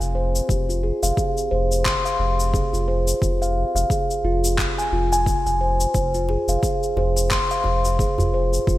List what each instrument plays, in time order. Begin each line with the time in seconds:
Already playing: singing bowl C4 C5
0.00 sub bass F1, shaker
0.15 steel tongue drum C5
0.35 shaker
0.48 sub bass F1, singing bowl G4, kick, shaker
0.69 steel tongue drum F4, shaker
0.83 steel tongue drum G#4
1.03 sub bass F1, steel tongue drum F5, shaker
1.17 steel tongue drum G#4, kick, shaker
1.37 shaker
1.51 sub bass F1, steel tongue drum C5
1.72 shaker
1.85 steel tongue drum C6, kick, clap, shaker
2.05 steel tongue drum F5, shaker
2.19 sub bass F1
2.40 shaker
2.54 steel tongue drum G#4, kick, shaker
2.73 sub bass F1, steel tongue drum F4, shaker
2.88 steel tongue drum C5
3.08 shaker
3.22 sub bass F1, steel tongue drum F4, kick, shaker
3.42 steel tongue drum F5, shaker
3.75 sub bass F1, steel tongue drum F5, shaker
3.90 steel tongue drum G#4, kick, shaker
4.11 shaker
4.24 sub bass F1, steel tongue drum F4
4.44 shaker
4.58 kick, clap, shaker
4.78 steel tongue drum G#5, shaker
4.92 sub bass F1, steel tongue drum F4
5.13 steel tongue drum G#5, shaker
5.26 kick, shaker
5.46 sub bass F1, steel tongue drum G#5, shaker
5.61 steel tongue drum C5
5.80 shaker
5.94 sub bass F1, singing bowl C5, kick, shaker
6.14 steel tongue drum F4, shaker
6.29 steel tongue drum G#4, djembe slap
6.48 sub bass F1, steel tongue drum F5, shaker
6.63 steel tongue drum G#4, kick, shaker
6.83 shaker
6.96 sub bass F1, steel tongue drum C5, djembe tone
7.16 djembe slap, shaker
7.31 steel tongue drum C6, kick, clap, shaker
7.51 steel tongue drum F5, shaker
7.64 sub bass F1, djembe tone
7.85 djembe slap, shaker
7.99 steel tongue drum G#4, kick, shaker
8.18 sub bass F1, steel tongue drum F4, djembe tone, djembe bass, shaker
8.34 steel tongue drum C5
8.53 djembe tone, shaker
8.67 sub bass F1, steel tongue drum F4, kick, shaker